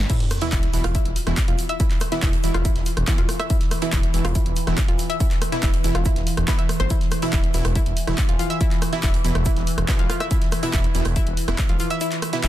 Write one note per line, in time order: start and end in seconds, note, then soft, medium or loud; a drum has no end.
0.10 12.48 E3 medium
0.10 0.18 E4 medium
0.10 kick loud
0.10 closed hi-hat loud
0.10 crash loud
0.10 sub drop medium
0.10 shaker medium
0.20 snare soft
0.20 closed hi-hat medium
0.31 cross-stick medium
0.31 open hi-hat loud
0.31 shaker medium
0.41 0.53 B2 medium
0.41 0.53 E3 medium
0.41 0.53 E4 loud
0.41 0.45 E4 medium
0.41 closed hi-hat soft
0.41 closed hi-hat medium
0.52 0.65 E1 loud
0.52 0.58 E4 loud
0.52 kick loud
0.52 snare loud
0.52 clap loud
0.52 closed hi-hat loud
0.52 shaker medium
0.63 closed hi-hat medium
0.73 0.80 E1 medium
0.73 0.84 B2 medium
0.73 0.84 E3 medium
0.73 0.84 E4 medium
0.73 open hi-hat medium
0.73 shaker medium
0.84 0.97 E1 loud
0.84 0.88 F4 medium
0.84 cross-stick medium
0.84 closed hi-hat soft
0.84 closed hi-hat medium
0.95 1.01 E4 medium
0.95 kick loud
0.95 closed hi-hat loud
0.95 shaker medium
1.05 1.12 E1 loud
1.05 closed hi-hat medium
1.16 open hi-hat loud
1.16 shaker medium
1.27 1.33 E1 medium
1.27 1.38 B2 medium
1.27 1.38 E3 medium
1.27 1.38 E4 loud
1.27 cross-stick medium
1.27 closed hi-hat medium
1.37 kick loud
1.37 snare loud
1.37 clap loud
1.37 closed hi-hat loud
1.37 shaker medium
1.48 1.54 E1 medium
1.48 1.52 F4 medium
1.48 closed hi-hat medium
1.58 open hi-hat medium
1.58 shaker medium
1.69 1.78 E5 loud
1.69 closed hi-hat medium
1.80 1.89 E4 medium
1.80 kick loud
1.80 closed hi-hat loud
1.80 shaker medium
1.91 snare soft
1.91 clap soft
1.91 closed hi-hat medium
2.00 cross-stick medium
2.00 open hi-hat loud
2.00 shaker medium
2.12 2.29 B2 medium
2.12 2.29 E3 medium
2.12 2.29 E4 medium
2.12 2.15 E4 medium
2.12 snare soft
2.12 closed hi-hat medium
2.22 2.35 E1 loud
2.22 2.28 E4 loud
2.22 kick loud
2.22 snare loud
2.22 clap loud
2.22 closed hi-hat loud
2.22 shaker medium
2.33 closed hi-hat medium
2.33 closed hi-hat soft
2.43 2.50 E1 medium
2.43 2.55 B2 medium
2.43 2.55 E3 medium
2.43 2.55 E4 medium
2.43 open hi-hat loud
2.43 shaker medium
2.54 2.67 E1 loud
2.54 2.58 F4 medium
2.54 cross-stick medium
2.54 closed hi-hat medium
2.65 2.71 E4 medium
2.65 kick loud
2.65 closed hi-hat loud
2.65 shaker medium
2.76 2.82 E1 loud
2.76 snare soft
2.76 closed hi-hat medium
2.86 open hi-hat loud
2.86 shaker medium
2.97 3.03 E1 medium
2.97 cross-stick medium
2.97 closed hi-hat medium
3.07 3.18 B2 loud
3.07 3.19 E3 medium
3.07 3.18 E4 loud
3.07 kick loud
3.07 snare loud
3.07 clap loud
3.07 closed hi-hat loud
3.07 shaker medium
3.18 3.25 E1 medium
3.18 3.22 F4 medium
3.18 closed hi-hat medium
3.29 cross-stick medium
3.29 open hi-hat loud
3.29 shaker medium
3.40 3.48 E5 loud
3.40 cross-stick medium
3.40 closed hi-hat medium
3.50 3.59 E4 medium
3.50 kick loud
3.50 closed hi-hat loud
3.50 shaker medium
3.60 snare soft
3.60 closed hi-hat medium
3.71 cross-stick medium
3.71 open hi-hat loud
3.71 shaker medium
3.82 3.93 B2 medium
3.82 3.93 E3 medium
3.82 3.86 E4 medium
3.82 3.93 E4 loud
3.82 closed hi-hat soft
3.82 closed hi-hat medium
3.92 4.06 E1 loud
3.92 3.98 E4 loud
3.92 kick loud
3.92 snare loud
3.92 clap loud
3.92 closed hi-hat loud
3.92 shaker medium
4.03 closed hi-hat medium
4.14 4.20 E1 medium
4.14 4.25 B2 medium
4.14 4.25 E3 medium
4.14 4.25 E4 medium
4.14 open hi-hat loud
4.14 shaker medium
4.25 4.37 E1 loud
4.25 4.28 F4 medium
4.25 cross-stick medium
4.25 closed hi-hat medium
4.25 closed hi-hat soft
4.35 4.41 E4 medium
4.35 kick loud
4.35 closed hi-hat loud
4.35 shaker medium
4.46 4.52 E1 loud
4.46 closed hi-hat medium
4.56 open hi-hat loud
4.56 shaker medium
4.67 4.74 E1 medium
4.67 4.78 B2 medium
4.67 4.78 E3 medium
4.67 4.78 E4 loud
4.67 cross-stick medium
4.67 closed hi-hat medium
4.77 kick loud
4.77 snare loud
4.77 clap loud
4.77 closed hi-hat medium
4.77 shaker medium
4.88 4.95 E1 medium
4.88 4.92 F4 medium
4.88 closed hi-hat medium
4.99 open hi-hat medium
4.99 shaker medium
5.10 5.18 E5 loud
5.10 closed hi-hat medium
5.20 5.29 E4 medium
5.20 kick loud
5.20 closed hi-hat medium
5.20 shaker medium
5.31 snare soft
5.31 clap soft
5.31 closed hi-hat soft
5.42 cross-stick medium
5.42 open hi-hat loud
5.42 shaker medium
5.52 5.70 B2 medium
5.52 5.70 E3 medium
5.52 5.56 E4 medium
5.52 5.70 E4 medium
5.52 snare soft
5.52 closed hi-hat medium
5.63 5.76 E1 loud
5.63 5.69 E4 loud
5.63 kick loud
5.63 snare loud
5.63 clap loud
5.63 closed hi-hat medium
5.63 shaker medium
5.74 closed hi-hat medium
5.74 closed hi-hat soft
5.84 5.91 E1 medium
5.84 5.95 B2 medium
5.84 5.95 E3 medium
5.84 5.95 E4 medium
5.84 open hi-hat loud
5.84 shaker medium
5.95 6.08 E1 loud
5.95 5.98 F4 medium
5.95 cross-stick medium
5.95 closed hi-hat medium
6.05 6.11 E4 medium
6.05 kick loud
6.05 closed hi-hat medium
6.05 shaker medium
6.16 6.23 E1 loud
6.16 snare soft
6.16 closed hi-hat medium
6.27 open hi-hat loud
6.27 shaker medium
6.37 6.44 E1 medium
6.37 cross-stick medium
6.37 closed hi-hat medium
6.48 6.59 B2 loud
6.48 6.59 E3 medium
6.48 6.59 E4 loud
6.48 6.57 B4 loud
6.48 kick loud
6.48 snare loud
6.48 clap loud
6.48 closed hi-hat medium
6.48 shaker medium
6.59 6.64 E5 medium
6.59 closed hi-hat medium
6.69 cross-stick medium
6.69 open hi-hat medium
6.69 shaker medium
6.80 6.86 G1 medium
6.80 6.89 C5 loud
6.80 cross-stick medium
6.80 closed hi-hat medium
6.90 6.99 E4 medium
6.90 kick loud
6.90 closed hi-hat medium
6.90 shaker medium
7.01 snare soft
7.01 closed hi-hat soft
7.11 cross-stick medium
7.11 open hi-hat loud
7.11 shaker medium
7.22 7.33 B2 loud
7.22 7.33 E3 medium
7.22 7.26 E4 medium
7.22 7.33 E4 loud
7.22 closed hi-hat soft
7.33 7.46 E1 loud
7.33 7.39 E4 loud
7.33 kick loud
7.33 snare loud
7.33 clap loud
7.33 closed hi-hat medium
7.33 shaker medium
7.44 closed hi-hat medium
7.54 7.61 E1 medium
7.54 7.65 B2 medium
7.54 7.65 E3 medium
7.54 7.65 E4 medium
7.54 open hi-hat loud
7.54 shaker medium
7.65 7.78 E1 loud
7.65 cross-stick medium
7.65 closed hi-hat soft
7.75 7.81 E4 medium
7.75 kick loud
7.75 closed hi-hat medium
7.75 shaker medium
7.86 7.93 E1 loud
7.86 closed hi-hat medium
7.97 open hi-hat loud
7.97 shaker medium
8.07 8.14 E1 medium
8.07 8.18 B2 medium
8.07 8.18 E3 medium
8.07 8.18 E4 loud
8.07 cross-stick medium
8.07 closed hi-hat medium
8.18 kick loud
8.18 snare loud
8.18 clap loud
8.18 closed hi-hat medium
8.18 shaker medium
8.29 8.35 E1 medium
8.29 8.32 F4 medium
8.29 closed hi-hat medium
8.39 8.43 F4 medium
8.39 open hi-hat medium
8.39 shaker medium
8.50 8.59 E5 loud
8.50 closed hi-hat medium
8.61 8.69 E4 medium
8.61 kick loud
8.61 closed hi-hat medium
8.61 shaker medium
8.71 snare soft
8.71 clap soft
8.71 closed hi-hat soft
8.82 cross-stick medium
8.82 open hi-hat loud
8.82 shaker medium
8.93 9.10 B2 medium
8.93 9.10 E3 medium
8.93 9.10 E4 medium
8.93 8.96 E4 medium
8.93 snare soft
8.93 closed hi-hat soft
9.03 9.16 E1 loud
9.03 9.09 E4 loud
9.03 kick loud
9.03 snare loud
9.03 clap loud
9.03 closed hi-hat medium
9.03 shaker medium
9.14 closed hi-hat medium
9.14 closed hi-hat soft
9.24 9.31 E1 medium
9.24 9.36 B2 medium
9.24 9.36 E3 medium
9.24 9.36 E4 medium
9.24 open hi-hat medium
9.24 shaker medium
9.35 9.48 E1 loud
9.35 cross-stick loud
9.35 closed hi-hat soft
9.45 9.52 E4 medium
9.45 kick loud
9.45 closed hi-hat medium
9.45 shaker loud
9.56 9.63 E1 loud
9.56 snare soft
9.56 closed hi-hat soft
9.67 open hi-hat loud
9.67 shaker medium
9.78 9.84 E1 medium
9.78 cross-stick medium
9.78 closed hi-hat medium
9.88 9.99 B2 loud
9.88 9.99 E3 medium
9.88 9.99 E4 loud
9.88 kick loud
9.88 snare loud
9.88 clap loud
9.88 closed hi-hat medium
9.88 shaker medium
9.99 10.05 E1 loud
9.99 10.03 F4 medium
9.99 closed hi-hat medium
10.10 10.13 F4 medium
10.10 cross-stick medium
10.10 open hi-hat medium
10.10 shaker medium
10.20 10.29 E5 loud
10.20 cross-stick medium
10.20 closed hi-hat medium
10.31 10.40 E4 medium
10.31 kick loud
10.31 closed hi-hat medium
10.31 shaker loud
10.41 snare soft
10.41 closed hi-hat medium
10.52 cross-stick medium
10.52 open hi-hat loud
10.52 shaker medium
10.63 10.74 B2 medium
10.63 10.74 E3 medium
10.63 10.66 E4 medium
10.63 10.74 E4 loud
10.63 closed hi-hat soft
10.63 closed hi-hat medium
10.73 10.86 E1 loud
10.73 10.79 E4 loud
10.73 kick loud
10.73 snare loud
10.73 clap loud
10.73 closed hi-hat medium
10.73 shaker medium
10.84 closed hi-hat medium
10.95 11.01 E1 medium
10.95 11.06 B2 medium
10.95 11.06 E3 medium
10.95 11.06 E4 medium
10.95 open hi-hat medium
10.95 shaker medium
11.05 11.18 E1 loud
11.05 cross-stick medium
11.05 closed hi-hat soft
11.16 11.22 E4 medium
11.16 kick loud
11.16 closed hi-hat medium
11.16 shaker medium
11.27 11.33 E1 loud
11.27 closed hi-hat medium
11.37 open hi-hat loud
11.37 shaker medium
11.48 11.54 E1 medium
11.48 11.59 B2 medium
11.48 11.59 E3 medium
11.48 11.59 E4 loud
11.48 cross-stick medium
11.48 closed hi-hat medium
11.58 kick loud
11.58 snare loud
11.58 clap loud
11.58 closed hi-hat medium
11.58 shaker medium
11.69 11.76 E1 medium
11.69 11.73 F4 medium
11.69 closed hi-hat medium
11.79 11.83 F4 medium
11.79 open hi-hat medium
11.79 shaker medium
11.90 11.99 E5 loud
11.90 closed hi-hat medium
12.01 12.10 E4 medium
12.01 closed hi-hat medium
12.01 shaker medium
12.11 snare soft
12.11 clap soft
12.11 closed hi-hat medium
12.22 cross-stick medium
12.22 open hi-hat loud
12.22 shaker medium
12.33 12.48 B2 medium
12.33 12.48 E3 medium
12.33 12.37 E4 medium
12.33 12.48 E4 medium
12.33 snare medium
12.33 closed hi-hat medium
12.43 12.48 E1 loud
12.43 12.48 E4 loud
12.43 snare loud
12.43 clap loud
12.43 closed hi-hat loud
12.43 shaker medium